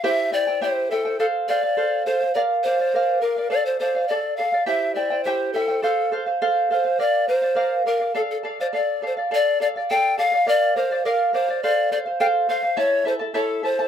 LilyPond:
<<
  \new Staff \with { instrumentName = "Charango" } { \time 2/4 \key d \minor \tempo 4 = 104 <e' g' c'' e'' g''>8 <e' c'' e'' g''>16 <e' c'' g''>16 <e' g' c'' e'' g''>8 <e' c'' e'' g''>16 <e' c'' g''>16 | <a' c'' f''>8 <a' c'' f''>16 <c'' f''>16 <a' c'' f''>8 <a' c'' f''>16 <c'' f''>16 | <bes' d'' f''>8 <bes' d'' f''>16 <d'' f''>16 <bes' d'' f''>8 <bes' d'' f''>16 <d'' f''>16 | <a' d'' f''>8 <a' d'' f''>16 <d'' f''>16 <a' d'' f''>8 <a' d'' f''>16 <d'' f''>16 |
<e' g' c'' e'' g''>8 <e' c'' e'' g''>16 <e' c'' g''>16 <e' g' c'' e'' g''>8 <e' c'' e'' g''>16 <e' c'' g''>16 | <a' c'' f''>8 <a' c'' f''>16 <c'' f''>16 <a' c'' f''>8 <a' c'' f''>16 <c'' f''>16 | <bes' d'' f''>8 <bes' d'' f''>16 <d'' f''>16 <bes' d'' f''>8 <bes' d'' f''>16 <d'' f''>16 | <a' d'' f''>8 <a' d'' f''>16 <d'' f''>16 <a' d'' f''>8 <a' d'' f''>16 <d'' f''>16 |
<a' d'' f''>8 <a' d'' f''>16 <d'' f''>16 <a' d'' f''>8 <a' d'' f''>16 <d'' f''>16 | <bes' d'' f''>8 <bes' d'' f''>16 <d'' f''>16 <bes' d'' f''>8 <bes' d'' f''>16 <d'' f''>16 | <a' c'' f''>8 <a' c'' f''>16 <c'' f''>16 <a' c'' f''>8 <a' c'' f''>16 <c'' f''>16 | <e' a' cis'' e'' a''>8 <e' a' e'' a''>16 <e' a' a''>16 <e' a' cis'' e'' a''>8 <e' a' e'' a''>16 <e' a' a''>16 | }
  \new Staff \with { instrumentName = "Pan flute" } { \time 2/4 \key d \minor e''8 d''8 c''8 a'8 | a'8 d''4 c''8 | d''8 c''4 bes'8 | d''16 c''16 c''8 d''8 f''8 |
e''8 d''8 c''8 a'8 | a'8 r4 c''8 | d''8 c''4 bes'8 | a'16 a'8 c''16 d''8 c''8 |
d''8 d''8 g''8 f''8 | d''8 c''8 bes'8 c''8 | d''8 d''8 g''8 f''8 | cis''8 c''8 a'8 c''8 | }
>>